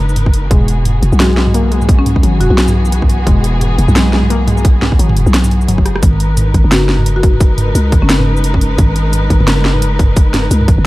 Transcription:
Already playing: 808-style bass F#1, string section G#3 D#4 A#4 B4
0.09 shaker
0.16 closed hi-hat, mid tom
0.26 kick
0.34 closed hi-hat
0.51 808-style bass E1, string section E3 B3 F#4 G#4, synth pluck G#3, kick, closed hi-hat
0.61 mid tom
0.68 closed hi-hat
0.85 closed hi-hat, mid tom
1.02 808-style bass E1, closed hi-hat
1.12 808-style bass B1, shaker
1.20 synth pluck G#3, marimba F#4, snare, closed hi-hat, mid tom
1.37 synth pluck G#3, snare
1.47 mid tom
1.54 synth pluck A#3, closed hi-hat
1.72 synth pluck G#3, closed hi-hat
1.82 mid tom, shaker
1.89 kick, closed hi-hat
1.99 marimba C#4
2.06 closed hi-hat, mid tom
2.16 kick
2.23 808-style bass G#1, synth pluck F#3, closed hi-hat
2.40 808-style bass E1, marimba F#4, closed hi-hat, mid tom
2.50 808-style bass B1, marimba F#4
2.58 snare, closed hi-hat
2.68 mid tom, shaker
2.85 shaker
2.92 closed hi-hat
3.02 kick, mid tom
3.10 closed hi-hat
3.27 808-style bass E1, synth pluck G#3, kick, closed hi-hat, mid tom
3.44 closed hi-hat
3.61 closed hi-hat, mid tom
3.78 808-style bass E1, closed hi-hat
3.88 808-style bass B1, mid tom, shaker
3.96 synth pluck G#3, snare, closed hi-hat
4.13 synth pluck G#3, snare
4.23 mid tom
4.30 synth pluck A#3, closed hi-hat
4.48 synth pluck G#3, closed hi-hat, mid tom
4.58 shaker
4.65 kick, closed hi-hat
4.82 snare, mid tom
4.92 kick
4.99 808-style bass G#1, synth pluck F#3, closed hi-hat
5.09 mid tom
5.16 808-style bass E1, closed hi-hat
5.26 808-style bass B1, shaker
5.34 snare, closed hi-hat
5.44 mid tom, shaker
5.51 closed hi-hat
5.61 shaker
5.68 808-style bass F#1, synth pluck F#3, closed hi-hat, mid tom
5.78 kick
5.86 cross-stick, closed hi-hat
5.96 cross-stick
6.03 808-style bass G#1, string section G#3 D#4 A#4 B4, kick, closed hi-hat, shaker
6.13 mid tom
6.20 closed hi-hat
6.37 closed hi-hat, mid tom, shaker
6.54 808-style bass G#1, kick, closed hi-hat
6.64 808-style bass F#1
6.72 marimba F#4, snare, closed hi-hat, mid tom
6.89 snare
6.99 mid tom
7.06 closed hi-hat
7.16 marimba F#4
7.23 kick, closed hi-hat
7.33 mid tom
7.40 kick, closed hi-hat, shaker
7.58 closed hi-hat, mid tom
7.75 808-style bass C#2, closed hi-hat, shaker
7.92 808-style bass G#1, kick, closed hi-hat, mid tom
8.02 808-style bass F#1, marimba C#4
8.09 snare, closed hi-hat, shaker
8.20 mid tom
8.37 shaker
8.44 closed hi-hat
8.54 kick, mid tom
8.61 closed hi-hat
8.78 808-style bass G#1, kick, closed hi-hat, mid tom, shaker
8.96 closed hi-hat
9.13 closed hi-hat, mid tom, shaker
9.30 808-style bass G#1, kick, closed hi-hat
9.40 808-style bass F#1, mid tom
9.47 snare, closed hi-hat
9.65 snare
9.75 mid tom
9.82 closed hi-hat
9.99 kick, closed hi-hat, mid tom
10.16 kick, closed hi-hat, shaker
10.34 snare, closed hi-hat, mid tom
10.51 808-style bass C#2, closed hi-hat, shaker
10.61 mid tom
10.68 808-style bass G#1, kick, closed hi-hat
10.78 808-style bass F#1

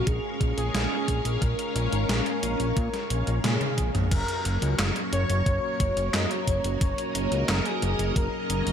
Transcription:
Already playing: string machine G#3 C#4 A#4 C#5 F5
0.07 analog synth bass A#1, soft synth lead G#4, kick, closed hi-hat
0.41 analog synth bass A#1, kick, closed hi-hat
0.57 analog synth bass A#1, soft synth lead G#4, closed hi-hat
0.74 analog synth bass A#1, snare, closed hi-hat
1.08 analog synth bass A#1, kick, closed hi-hat
1.25 analog synth bass A#1, closed hi-hat
1.42 analog synth bass A#1, soft synth lead A#4, kick, closed hi-hat
1.59 closed hi-hat
1.75 analog synth bass A#1, closed hi-hat
1.92 analog synth bass G#1, closed hi-hat
2.09 analog synth bass A#1, snare, closed hi-hat
2.26 closed hi-hat
2.43 analog synth bass A#1, closed hi-hat
2.60 analog synth bass A#1, closed hi-hat
2.77 analog synth bass A#2, kick, closed hi-hat
2.94 snare, closed hi-hat
3.10 analog synth bass A#1, closed hi-hat
3.27 analog synth bass A#1, closed hi-hat
3.44 analog synth bass A#2, soft synth lead G#4, snare, closed hi-hat, high tom
3.61 soft synth lead G#4, closed hi-hat, high tom
3.78 analog synth bass A#1, kick, closed hi-hat
3.95 analog synth bass A#1, closed hi-hat, mid tom
4.11 analog synth bass F#1, string machine F#3 A#3 C#4 A#4 C#5, soft synth lead A#4, kick, closed hi-hat, crash
4.28 closed hi-hat
4.45 analog synth bass F#1, closed hi-hat
4.62 analog synth bass C#2, closed hi-hat
4.79 analog synth bass F#1, snare, clap, closed hi-hat
4.96 closed hi-hat
5.13 analog synth bass F#1, soft synth lead C#5, closed hi-hat
5.30 analog synth bass F#1, closed hi-hat
5.46 analog synth bass F#1, kick, closed hi-hat
5.80 analog synth bass F#1, kick, closed hi-hat
5.97 analog synth bass F#1, closed hi-hat
6.14 analog synth bass F#2, soft synth lead D#5, snare, clap, closed hi-hat
6.31 soft synth lead C#5, closed hi-hat
6.47 analog synth bass F#1, kick, closed hi-hat
6.64 analog synth bass F#1, closed hi-hat
6.81 analog synth bass F#1, soft synth lead C#5, string machine D#5, kick, closed hi-hat
6.98 closed hi-hat
7.15 analog synth bass F#1, closed hi-hat
7.32 analog synth bass C#2, closed hi-hat
7.48 analog synth bass F#1, soft synth lead A#4, snare, clap, closed hi-hat
7.65 soft synth lead G#4, closed hi-hat
7.82 analog synth bass F#1, closed hi-hat
7.99 analog synth bass F#1, closed hi-hat
8.16 analog synth bass F#1, soft synth lead A#4, kick, closed hi-hat
8.50 analog synth bass F#1, closed hi-hat
8.67 analog synth bass F#1, closed hi-hat

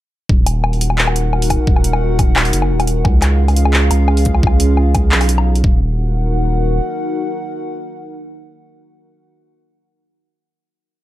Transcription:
0.29 sub bass D#1, analog synth pad D#4 F#4 A#4 F#5, kick
0.46 closed hi-hat, low woodblock
0.64 low woodblock
0.73 open hi-hat
0.81 closed hi-hat
0.90 low woodblock
0.98 clap
1.08 low woodblock
1.16 closed hi-hat
1.33 low woodblock
1.42 open hi-hat
1.50 kick, closed hi-hat, low woodblock
1.67 sub bass D#1, kick
1.76 low woodblock
1.84 closed hi-hat
1.93 low woodblock
2.19 kick, closed hi-hat, low woodblock
2.36 clap, low woodblock
2.45 open hi-hat
2.53 sub bass F#1, closed hi-hat
2.62 low woodblock
2.70 sub bass D#1
2.80 closed hi-hat, low woodblock
2.87 closed hi-hat
3.04 sub bass C#2, analog synth pad C#4 F4 G#4 F5, kick, low woodblock
3.22 clap, closed hi-hat, low woodblock
3.48 open hi-hat, low woodblock
3.56 closed hi-hat
3.65 low woodblock
3.73 clap
3.91 sub bass C#2, closed hi-hat, low woodblock
4.08 low woodblock
4.17 open hi-hat
4.25 kick, closed hi-hat
4.35 low woodblock
4.43 sub bass C#2, kick, low woodblock
4.60 closed hi-hat
4.77 low woodblock
4.95 kick, closed hi-hat, low woodblock
5.12 sub bass B1, clap
5.21 open hi-hat, low woodblock
5.29 closed hi-hat
5.38 low woodblock
5.55 closed hi-hat
5.64 sub bass D#1, analog synth pad D#4 F#4 A#4 F#5, kick

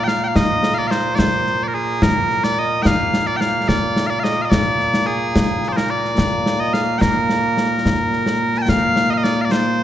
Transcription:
Already playing: bagpipes A#2 A#3
0.04 bagpipes F5 G5, snare
0.24 bagpipes F5 G5
0.36 bagpipes D#5, concert bass drum, snare
0.63 snare
0.74 bagpipes D5 F5
0.87 bagpipes C5 F5, snare
1.15 bagpipes C5 D5, concert bass drum, snare
1.47 snare
1.63 bagpipes D5
1.68 bagpipes A#4
1.74 bagpipes G#4
2.02 bagpipes A#4, concert bass drum, snare
2.30 snare
2.44 bagpipes D5, snare
2.59 bagpipes D#5
2.82 bagpipes F5 G5, concert bass drum, snare
3.14 snare
3.27 bagpipes D5
3.37 bagpipes G5
3.41 bagpipes F5, snare
3.68 bagpipes D5, concert bass drum, snare
3.96 snare
4.07 bagpipes D5 F5
4.20 bagpipes D#5 F5
4.24 snare
4.42 bagpipes D#5 F5
4.50 bagpipes D5, concert bass drum, snare
4.80 snare
4.94 snare
5.06 bagpipes G#4
5.36 concert bass drum, snare
5.64 snare
5.68 bagpipes C5 D5
5.76 bagpipes A#4, snare
5.90 bagpipes D5
6.05 snare
6.18 concert bass drum, snare
6.46 snare
6.60 bagpipes D#5
6.73 bagpipes F5, snare
6.98 bagpipes A#4 G5, concert bass drum, snare
7.30 snare
7.57 snare
7.85 concert bass drum, snare
8.13 snare
8.26 snare
8.54 bagpipes A5, snare
8.62 bagpipes G5
8.68 bagpipes F5, concert bass drum, snare
8.96 snare
9.10 bagpipes D#5 F5
9.18 bagpipes D#5
9.24 bagpipes D5, snare
9.41 bagpipes D5 F5
9.51 bagpipes C5, snare

